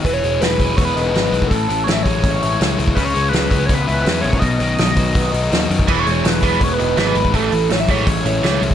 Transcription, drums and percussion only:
0.05 kick medium
0.05 open hi-hat soft
0.24 open hi-hat soft
0.41 snare medium
0.41 open hi-hat medium
0.60 kick medium
0.60 open hi-hat soft
0.78 kick medium
0.78 open hi-hat medium
0.97 open hi-hat soft
1.15 snare medium
1.15 open hi-hat soft
1.33 open hi-hat soft
1.42 kick medium
1.51 kick medium
1.51 open hi-hat medium
1.70 open hi-hat soft
1.88 snare loud
1.88 open hi-hat medium
2.06 kick medium
2.06 open hi-hat soft
2.24 kick medium
2.24 open hi-hat medium
2.42 open hi-hat soft
2.61 snare medium
2.61 open hi-hat medium
2.79 open hi-hat soft
2.88 kick medium
2.97 kick medium
2.97 open hi-hat medium
3.15 open hi-hat soft
3.33 snare medium
3.33 open hi-hat medium
3.51 kick medium
3.51 open hi-hat soft
3.69 kick loud
3.69 open hi-hat medium
3.88 open hi-hat soft
4.06 snare medium
4.06 open hi-hat medium
4.24 open hi-hat soft
4.33 kick medium
4.42 kick medium
4.42 open hi-hat medium
4.60 open hi-hat soft
4.78 snare medium
4.78 open hi-hat medium
4.96 kick medium
4.96 open hi-hat soft
5.15 kick medium
5.15 open hi-hat medium
5.34 open hi-hat soft
5.52 snare medium
5.52 open hi-hat medium
5.71 open hi-hat soft
5.79 kick medium
5.88 kick medium
5.88 crash medium
6.07 open hi-hat soft
6.25 snare loud
6.25 open hi-hat medium
6.43 kick medium
6.43 open hi-hat soft
6.61 kick loud
6.61 open hi-hat medium
6.79 open hi-hat soft
6.97 snare medium
6.97 open hi-hat medium
7.15 open hi-hat soft
7.25 kick medium
7.34 kick medium
7.34 open hi-hat medium
7.52 open hi-hat soft
7.70 snare loud
7.70 open hi-hat medium
7.88 kick medium
7.88 open hi-hat soft
8.07 kick loud
8.07 open hi-hat medium
8.25 open hi-hat soft
8.44 snare medium
8.44 open hi-hat medium
8.62 open hi-hat soft
8.71 kick medium

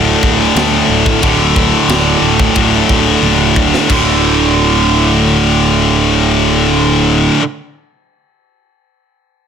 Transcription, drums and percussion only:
0.23 kick medium
0.56 snare loud
0.56 ride bell medium
1.06 kick medium
1.23 kick loud
1.23 ride bell medium
1.56 kick medium
1.89 snare loud
1.89 ride bell medium
2.40 kick medium
2.56 kick loud
2.56 ride bell medium
2.89 kick medium
3.23 high tom medium
3.56 kick medium
3.74 snare medium
3.90 kick loud
3.90 crash medium

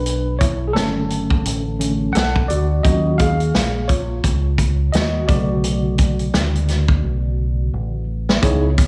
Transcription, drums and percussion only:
0.06 closed hi-hat medium
0.41 kick medium
0.41 closed hi-hat medium
0.76 snare medium
0.76 closed hi-hat medium
1.10 closed hi-hat medium
1.30 kick medium
1.45 closed hi-hat medium
1.81 closed hi-hat medium
2.15 snare loud
2.15 closed hi-hat medium
2.36 kick medium
2.50 closed hi-hat medium
2.85 kick loud
2.85 closed hi-hat medium
3.19 kick medium
3.19 closed hi-hat medium
3.40 closed hi-hat soft
3.55 snare loud
3.55 closed hi-hat medium
3.89 kick medium
3.89 closed hi-hat medium
4.24 kick medium
4.24 closed hi-hat medium
4.58 kick medium
4.58 closed hi-hat medium
4.93 snare loud
4.93 closed hi-hat medium
5.28 kick loud
5.28 closed hi-hat medium
5.64 closed hi-hat medium
5.98 kick medium
5.98 closed hi-hat medium
6.19 closed hi-hat soft
6.34 snare medium
6.34 closed hi-hat medium
6.55 closed hi-hat soft
6.68 snare soft
6.68 closed hi-hat medium
6.88 kick medium
8.29 snare medium
8.43 kick loud
8.43 closed hi-hat medium
8.78 kick medium
8.78 closed hi-hat medium

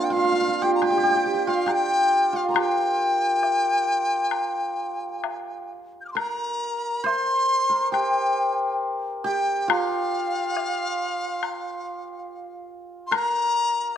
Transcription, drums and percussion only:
0.82 high woodblock soft
1.68 high woodblock soft
2.56 high woodblock medium
3.43 low woodblock soft
4.31 high woodblock medium
5.24 high woodblock soft
5.24 low woodblock soft
6.17 high woodblock medium
7.06 low woodblock soft
7.94 high woodblock soft
9.70 high woodblock medium
10.57 low woodblock soft
11.43 high woodblock medium
13.12 high woodblock medium

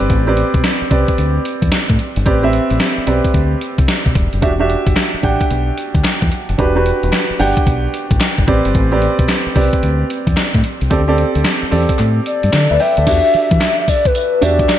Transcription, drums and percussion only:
0.00 closed hi-hat soft
0.10 kick loud
0.10 closed hi-hat medium
0.37 closed hi-hat medium
0.54 kick loud
0.54 closed hi-hat soft
0.64 snare loud
0.64 closed hi-hat medium
0.91 kick medium
0.91 closed hi-hat medium
1.08 kick medium
1.08 closed hi-hat medium
1.18 closed hi-hat medium
1.45 closed hi-hat medium
1.62 kick loud
1.62 closed hi-hat medium
1.72 snare loud
1.72 closed hi-hat medium
1.90 kick medium
1.99 closed hi-hat medium
2.16 closed hi-hat medium
2.26 kick loud
2.26 closed hi-hat medium
2.53 closed hi-hat medium
2.70 closed hi-hat medium
2.80 snare loud
2.80 closed hi-hat medium
3.07 closed hi-hat medium
3.25 kick medium
3.25 closed hi-hat medium
3.34 kick medium
3.34 closed hi-hat medium
3.61 closed hi-hat medium
3.78 kick loud
3.78 closed hi-hat medium
3.88 snare loud
3.88 closed hi-hat medium
4.06 kick medium
4.15 kick loud
4.15 closed hi-hat medium
4.33 closed hi-hat medium
4.42 kick loud
4.42 closed hi-hat medium
4.70 closed hi-hat medium
4.87 kick medium
4.87 closed hi-hat medium
4.96 snare loud
4.96 clap medium
4.96 closed hi-hat medium
5.23 kick medium
5.23 closed hi-hat medium
5.41 kick medium
5.41 closed hi-hat medium
5.51 closed hi-hat medium
5.78 closed hi-hat medium
5.95 kick loud
5.95 closed hi-hat medium
6.04 snare loud
6.04 clap medium
6.04 closed hi-hat medium
6.22 kick medium
6.32 closed hi-hat medium
6.49 closed hi-hat soft
6.59 kick loud
6.59 closed hi-hat medium
6.86 closed hi-hat medium
7.03 closed hi-hat soft
7.13 snare loud
7.13 clap medium
7.13 closed hi-hat medium
7.40 open hi-hat medium
7.57 kick medium
7.57 closed hi-hat soft
7.67 kick loud
7.67 closed hi-hat medium
7.94 closed hi-hat medium
8.11 kick loud
8.11 closed hi-hat medium
8.20 snare loud
8.20 clap medium
8.20 closed hi-hat medium
8.38 kick medium
8.48 kick medium
8.48 closed hi-hat medium
8.65 closed hi-hat medium
8.75 kick loud
8.75 closed hi-hat medium
9.02 closed hi-hat medium
9.19 kick loud
9.19 closed hi-hat medium
9.29 snare loud
9.29 clap medium
9.29 closed hi-hat medium
9.56 kick medium
9.56 open hi-hat medium
9.73 kick medium
9.73 closed hi-hat soft
9.83 closed hi-hat medium
10.10 closed hi-hat medium
10.27 kick loud
10.27 closed hi-hat medium
10.37 snare loud
10.37 clap medium
10.37 closed hi-hat medium
10.54 kick medium
10.64 closed hi-hat medium
10.81 closed hi-hat soft
10.91 kick loud
10.91 closed hi-hat medium
11.18 closed hi-hat medium
11.35 closed hi-hat soft
11.45 snare loud
11.45 clap medium
11.45 closed hi-hat medium
11.72 open hi-hat medium
11.89 kick medium
11.89 closed hi-hat medium
11.99 clap medium
11.99 closed hi-hat medium
12.26 closed hi-hat medium
12.43 closed hi-hat medium
12.53 snare loud
12.53 clap medium
12.53 closed hi-hat medium
12.80 open hi-hat medium
12.97 closed hi-hat soft
13.07 kick loud
13.07 closed hi-hat medium
13.07 crash medium
13.07 tambourine medium
13.34 closed hi-hat medium
13.51 kick loud
13.51 closed hi-hat medium
13.61 snare loud
13.61 clap medium
13.61 closed hi-hat medium
13.61 tambourine medium
13.88 kick medium
13.88 open hi-hat medium
13.88 tambourine medium
14.05 kick medium
14.05 closed hi-hat medium
14.15 closed hi-hat medium
14.15 tambourine medium
14.42 closed hi-hat medium
14.42 tambourine medium
14.59 kick loud
14.59 closed hi-hat medium
14.69 snare loud
14.69 clap medium
14.69 closed hi-hat medium
14.69 tambourine loud

